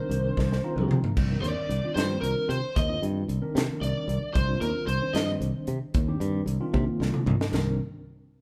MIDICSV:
0, 0, Header, 1, 6, 480
1, 0, Start_track
1, 0, Key_signature, -3, "minor"
1, 0, Tempo, 531444
1, 1050, Time_signature, 6, 3, 24, 8
1, 7599, End_track
2, 0, Start_track
2, 0, Title_t, "Lead electric guitar"
2, 0, Program_c, 0, 29
2, 0, Note_on_c, 0, 72, 72
2, 761, Note_off_c, 0, 72, 0
2, 1280, Note_on_c, 0, 74, 87
2, 1731, Note_off_c, 0, 74, 0
2, 1756, Note_on_c, 0, 72, 88
2, 1991, Note_off_c, 0, 72, 0
2, 1995, Note_on_c, 0, 70, 58
2, 2235, Note_off_c, 0, 70, 0
2, 2256, Note_on_c, 0, 72, 72
2, 2486, Note_off_c, 0, 72, 0
2, 2494, Note_on_c, 0, 75, 95
2, 2725, Note_off_c, 0, 75, 0
2, 3446, Note_on_c, 0, 74, 72
2, 3894, Note_off_c, 0, 74, 0
2, 3919, Note_on_c, 0, 72, 77
2, 4157, Note_off_c, 0, 72, 0
2, 4164, Note_on_c, 0, 70, 84
2, 4393, Note_off_c, 0, 70, 0
2, 4397, Note_on_c, 0, 72, 71
2, 4635, Note_off_c, 0, 72, 0
2, 4635, Note_on_c, 0, 75, 97
2, 4783, Note_off_c, 0, 75, 0
2, 7599, End_track
3, 0, Start_track
3, 0, Title_t, "Tine electric piano"
3, 0, Program_c, 1, 4
3, 0, Note_on_c, 1, 51, 83
3, 0, Note_on_c, 1, 60, 68
3, 0, Note_on_c, 1, 62, 69
3, 0, Note_on_c, 1, 70, 85
3, 397, Note_off_c, 1, 51, 0
3, 402, Note_off_c, 1, 60, 0
3, 403, Note_off_c, 1, 62, 0
3, 406, Note_off_c, 1, 70, 0
3, 571, Note_on_c, 1, 51, 85
3, 579, Note_on_c, 1, 60, 86
3, 580, Note_on_c, 1, 82, 70
3, 585, Note_on_c, 1, 65, 102
3, 586, Note_on_c, 1, 62, 73
3, 914, Note_off_c, 1, 51, 0
3, 918, Note_off_c, 1, 60, 0
3, 921, Note_off_c, 1, 62, 0
3, 921, Note_off_c, 1, 65, 0
3, 1022, Note_off_c, 1, 82, 0
3, 1181, Note_on_c, 1, 51, 69
3, 1182, Note_on_c, 1, 62, 61
3, 1183, Note_on_c, 1, 60, 60
3, 1187, Note_on_c, 1, 70, 71
3, 1519, Note_off_c, 1, 51, 0
3, 1519, Note_off_c, 1, 62, 0
3, 1520, Note_off_c, 1, 60, 0
3, 1522, Note_off_c, 1, 70, 0
3, 1660, Note_on_c, 1, 51, 62
3, 1660, Note_on_c, 1, 60, 63
3, 1663, Note_on_c, 1, 62, 62
3, 1667, Note_on_c, 1, 65, 74
3, 2342, Note_off_c, 1, 51, 0
3, 2342, Note_off_c, 1, 60, 0
3, 2343, Note_off_c, 1, 62, 0
3, 2345, Note_off_c, 1, 65, 0
3, 2597, Note_on_c, 1, 51, 57
3, 2601, Note_on_c, 1, 60, 57
3, 2607, Note_on_c, 1, 62, 57
3, 2613, Note_on_c, 1, 65, 67
3, 2947, Note_off_c, 1, 51, 0
3, 2949, Note_off_c, 1, 60, 0
3, 2952, Note_off_c, 1, 62, 0
3, 2955, Note_off_c, 1, 65, 0
3, 3081, Note_on_c, 1, 51, 83
3, 3087, Note_on_c, 1, 60, 76
3, 3089, Note_on_c, 1, 62, 78
3, 3090, Note_on_c, 1, 70, 88
3, 3772, Note_off_c, 1, 51, 0
3, 3775, Note_off_c, 1, 60, 0
3, 3776, Note_off_c, 1, 62, 0
3, 3777, Note_off_c, 1, 70, 0
3, 4037, Note_on_c, 1, 51, 64
3, 4043, Note_on_c, 1, 60, 60
3, 4047, Note_on_c, 1, 62, 68
3, 4048, Note_on_c, 1, 65, 79
3, 4386, Note_off_c, 1, 51, 0
3, 4390, Note_off_c, 1, 60, 0
3, 4391, Note_off_c, 1, 62, 0
3, 4392, Note_off_c, 1, 65, 0
3, 4525, Note_on_c, 1, 51, 74
3, 4530, Note_on_c, 1, 60, 71
3, 4532, Note_on_c, 1, 62, 66
3, 4536, Note_on_c, 1, 72, 78
3, 5213, Note_off_c, 1, 51, 0
3, 5216, Note_off_c, 1, 60, 0
3, 5217, Note_off_c, 1, 62, 0
3, 5219, Note_off_c, 1, 72, 0
3, 5487, Note_on_c, 1, 51, 86
3, 5489, Note_on_c, 1, 60, 67
3, 5493, Note_on_c, 1, 62, 78
3, 5497, Note_on_c, 1, 67, 90
3, 5831, Note_off_c, 1, 51, 0
3, 5832, Note_off_c, 1, 60, 0
3, 5834, Note_off_c, 1, 62, 0
3, 5836, Note_off_c, 1, 67, 0
3, 5959, Note_on_c, 1, 51, 92
3, 5965, Note_on_c, 1, 60, 85
3, 5967, Note_on_c, 1, 62, 79
3, 5967, Note_on_c, 1, 65, 97
3, 6650, Note_off_c, 1, 51, 0
3, 6653, Note_off_c, 1, 60, 0
3, 6654, Note_off_c, 1, 62, 0
3, 6654, Note_off_c, 1, 65, 0
3, 6806, Note_on_c, 1, 60, 77
3, 6807, Note_on_c, 1, 51, 85
3, 6808, Note_on_c, 1, 62, 71
3, 6808, Note_on_c, 1, 70, 88
3, 7030, Note_off_c, 1, 51, 0
3, 7030, Note_off_c, 1, 60, 0
3, 7031, Note_off_c, 1, 62, 0
3, 7031, Note_off_c, 1, 70, 0
3, 7599, End_track
4, 0, Start_track
4, 0, Title_t, "Fingered electric bass"
4, 0, Program_c, 2, 33
4, 85, Note_on_c, 2, 36, 86
4, 267, Note_off_c, 2, 36, 0
4, 339, Note_on_c, 2, 36, 103
4, 516, Note_off_c, 2, 36, 0
4, 687, Note_on_c, 2, 36, 76
4, 778, Note_off_c, 2, 36, 0
4, 796, Note_on_c, 2, 48, 76
4, 891, Note_off_c, 2, 48, 0
4, 1054, Note_on_c, 2, 36, 82
4, 1233, Note_off_c, 2, 36, 0
4, 1288, Note_on_c, 2, 39, 76
4, 1379, Note_off_c, 2, 39, 0
4, 1530, Note_on_c, 2, 36, 74
4, 1620, Note_off_c, 2, 36, 0
4, 1767, Note_on_c, 2, 43, 85
4, 1948, Note_off_c, 2, 43, 0
4, 2004, Note_on_c, 2, 36, 75
4, 2096, Note_off_c, 2, 36, 0
4, 2248, Note_on_c, 2, 48, 85
4, 2339, Note_off_c, 2, 48, 0
4, 2496, Note_on_c, 2, 39, 90
4, 2674, Note_off_c, 2, 39, 0
4, 2731, Note_on_c, 2, 43, 88
4, 2911, Note_off_c, 2, 43, 0
4, 2966, Note_on_c, 2, 36, 79
4, 3058, Note_off_c, 2, 36, 0
4, 3207, Note_on_c, 2, 48, 98
4, 3298, Note_off_c, 2, 48, 0
4, 3442, Note_on_c, 2, 36, 86
4, 3535, Note_off_c, 2, 36, 0
4, 3682, Note_on_c, 2, 36, 95
4, 3775, Note_off_c, 2, 36, 0
4, 3931, Note_on_c, 2, 36, 89
4, 4110, Note_off_c, 2, 36, 0
4, 4164, Note_on_c, 2, 39, 94
4, 4256, Note_off_c, 2, 39, 0
4, 4402, Note_on_c, 2, 36, 90
4, 4495, Note_off_c, 2, 36, 0
4, 4639, Note_on_c, 2, 43, 82
4, 4823, Note_off_c, 2, 43, 0
4, 4882, Note_on_c, 2, 36, 82
4, 4975, Note_off_c, 2, 36, 0
4, 5128, Note_on_c, 2, 48, 87
4, 5218, Note_off_c, 2, 48, 0
4, 5369, Note_on_c, 2, 39, 93
4, 5549, Note_off_c, 2, 39, 0
4, 5602, Note_on_c, 2, 43, 99
4, 5785, Note_off_c, 2, 43, 0
4, 5833, Note_on_c, 2, 36, 90
4, 5929, Note_off_c, 2, 36, 0
4, 6084, Note_on_c, 2, 48, 105
4, 6176, Note_off_c, 2, 48, 0
4, 6322, Note_on_c, 2, 36, 91
4, 6414, Note_off_c, 2, 36, 0
4, 6560, Note_on_c, 2, 36, 106
4, 6653, Note_off_c, 2, 36, 0
4, 6795, Note_on_c, 2, 36, 84
4, 7024, Note_off_c, 2, 36, 0
4, 7599, End_track
5, 0, Start_track
5, 0, Title_t, "Muted fingered electric bass strokes"
5, 918, Note_on_c, 9, 29, 35
5, 1008, Note_off_c, 9, 29, 0
5, 3330, Note_on_c, 9, 29, 37
5, 3420, Note_off_c, 9, 29, 0
5, 6207, Note_on_c, 9, 29, 43
5, 6297, Note_off_c, 9, 29, 0
5, 6680, Note_on_c, 9, 29, 39
5, 6770, Note_off_c, 9, 29, 0
5, 7599, End_track
6, 0, Start_track
6, 0, Title_t, "Drums"
6, 103, Note_on_c, 9, 42, 66
6, 193, Note_off_c, 9, 42, 0
6, 337, Note_on_c, 9, 36, 72
6, 352, Note_on_c, 9, 38, 58
6, 427, Note_off_c, 9, 36, 0
6, 442, Note_off_c, 9, 38, 0
6, 473, Note_on_c, 9, 38, 57
6, 564, Note_off_c, 9, 38, 0
6, 703, Note_on_c, 9, 47, 71
6, 793, Note_off_c, 9, 47, 0
6, 821, Note_on_c, 9, 45, 76
6, 911, Note_off_c, 9, 45, 0
6, 938, Note_on_c, 9, 43, 83
6, 1028, Note_off_c, 9, 43, 0
6, 1056, Note_on_c, 9, 36, 92
6, 1057, Note_on_c, 9, 49, 86
6, 1146, Note_off_c, 9, 36, 0
6, 1148, Note_off_c, 9, 49, 0
6, 1301, Note_on_c, 9, 42, 59
6, 1391, Note_off_c, 9, 42, 0
6, 1540, Note_on_c, 9, 42, 59
6, 1631, Note_off_c, 9, 42, 0
6, 1780, Note_on_c, 9, 42, 84
6, 1791, Note_on_c, 9, 38, 100
6, 1870, Note_off_c, 9, 42, 0
6, 1881, Note_off_c, 9, 38, 0
6, 2019, Note_on_c, 9, 42, 62
6, 2109, Note_off_c, 9, 42, 0
6, 2261, Note_on_c, 9, 42, 56
6, 2351, Note_off_c, 9, 42, 0
6, 2496, Note_on_c, 9, 36, 94
6, 2503, Note_on_c, 9, 42, 85
6, 2586, Note_off_c, 9, 36, 0
6, 2593, Note_off_c, 9, 42, 0
6, 2738, Note_on_c, 9, 42, 55
6, 2829, Note_off_c, 9, 42, 0
6, 2974, Note_on_c, 9, 42, 60
6, 3064, Note_off_c, 9, 42, 0
6, 3221, Note_on_c, 9, 42, 94
6, 3232, Note_on_c, 9, 38, 110
6, 3311, Note_off_c, 9, 42, 0
6, 3322, Note_off_c, 9, 38, 0
6, 3460, Note_on_c, 9, 42, 60
6, 3550, Note_off_c, 9, 42, 0
6, 3696, Note_on_c, 9, 42, 55
6, 3786, Note_off_c, 9, 42, 0
6, 3933, Note_on_c, 9, 36, 105
6, 3933, Note_on_c, 9, 42, 71
6, 4023, Note_off_c, 9, 36, 0
6, 4023, Note_off_c, 9, 42, 0
6, 4170, Note_on_c, 9, 42, 57
6, 4260, Note_off_c, 9, 42, 0
6, 4412, Note_on_c, 9, 42, 60
6, 4502, Note_off_c, 9, 42, 0
6, 4648, Note_on_c, 9, 42, 83
6, 4659, Note_on_c, 9, 38, 121
6, 4739, Note_off_c, 9, 42, 0
6, 4749, Note_off_c, 9, 38, 0
6, 4892, Note_on_c, 9, 42, 54
6, 4982, Note_off_c, 9, 42, 0
6, 5122, Note_on_c, 9, 42, 57
6, 5213, Note_off_c, 9, 42, 0
6, 5366, Note_on_c, 9, 42, 71
6, 5370, Note_on_c, 9, 36, 102
6, 5457, Note_off_c, 9, 42, 0
6, 5461, Note_off_c, 9, 36, 0
6, 5610, Note_on_c, 9, 42, 60
6, 5700, Note_off_c, 9, 42, 0
6, 5848, Note_on_c, 9, 42, 64
6, 5938, Note_off_c, 9, 42, 0
6, 6083, Note_on_c, 9, 48, 58
6, 6088, Note_on_c, 9, 36, 82
6, 6174, Note_off_c, 9, 48, 0
6, 6178, Note_off_c, 9, 36, 0
6, 6339, Note_on_c, 9, 38, 72
6, 6430, Note_off_c, 9, 38, 0
6, 6447, Note_on_c, 9, 45, 65
6, 6538, Note_off_c, 9, 45, 0
6, 6567, Note_on_c, 9, 43, 87
6, 6657, Note_off_c, 9, 43, 0
6, 6694, Note_on_c, 9, 38, 94
6, 6784, Note_off_c, 9, 38, 0
6, 6801, Note_on_c, 9, 57, 75
6, 6812, Note_on_c, 9, 38, 82
6, 6892, Note_off_c, 9, 57, 0
6, 6902, Note_off_c, 9, 38, 0
6, 7599, End_track
0, 0, End_of_file